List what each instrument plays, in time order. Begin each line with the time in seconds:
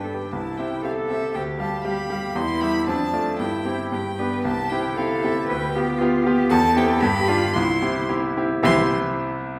Already playing: grand piano G2 D4, violin G5
0.04 cello A4
0.15 grand piano G4 B4
0.31 grand piano C2, cello E4, violin A5
0.57 grand piano C4 G4 E5, violin G5
0.84 grand piano C4 G4 E5, cello A4, violin F5
1.08 grand piano C4 G4 E5, violin E5
1.34 grand piano D2, cello G4, violin G5
1.59 grand piano G3 G4 F5, violin A5
1.84 grand piano G3 G4 F5, violin B5
2.10 grand piano G3 G4 F5
2.35 grand piano E2, cello E4, violin C6
2.60 grand piano G3 G4 E5, violin B5
2.87 grand piano F2, cello D4, violin A5
3.13 grand piano A3 F4 D5
3.39 grand piano G2, cello E4, violin G5
3.65 grand piano C4 E4 G4
3.92 grand piano G2, cello G4, violin G5
4.18 grand piano B3 D4 G4, cello B4
4.44 grand piano C2, cello G4, violin A5
4.69 grand piano C4 E4 G4, violin G5
4.97 grand piano C4 E4 G4, cello A4, violin F5
5.23 grand piano C4 E4 G4, violin E5
5.48 grand piano D2, cello B4, violin G5
5.73 grand piano B3 F4 G4, cello G4
5.98 grand piano B3 F4 G4, cello F4
6.24 grand piano B3 F4 G4, cello G4
6.50 grand piano E2, cello A4, violin A5
6.76 grand piano C4 E4 G4, violin G5
7.00 grand piano G2, cello G4, violin B5
7.28 grand piano D4 F4 G4, cello F4
7.54 grand piano C2, cello E4, violin C6
7.82 grand piano C4 E4 G4
8.09 grand piano C4 E4 G4
8.37 grand piano C4 E4 G4
8.63 grand piano C2 C3 C4 E4 G4 E5, cello E3, violin C6